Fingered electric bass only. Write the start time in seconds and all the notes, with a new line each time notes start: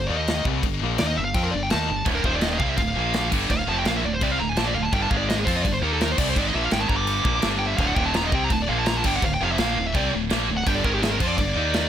0.09 D#2
0.45 C2
0.64 G1
0.83 A#1
1.00 D#2
1.18 G1
1.35 F2
1.54 G1
1.73 D#2
1.90 G1
2.06 D1
2.24 D#1
2.60 C2
2.78 D1
2.97 A#1
3.32 G1
3.50 D1
3.68 F1
3.86 A#1
4.04 D1
4.21 C2
4.40 D1
4.58 A#1
4.75 D1
4.93 G1
5.11 G#1
5.47 F2
5.64 G1
5.82 D#2
6.19 C2
6.37 G#1
6.55 A#1
6.72 G#1
6.90 G1
7.25 A#1
7.44 G1
7.79 D1
7.97 D#1
8.33 C2
8.50 D1
8.70 A#1
9.04 G1
9.23 D1
9.41 F1
9.59 A#1
9.76 D1
9.95 C2
10.14 D1
10.31 A#1
10.49 D1
10.66 G1
10.85 G#1
11.21 F2
11.38 G1
11.55 D#2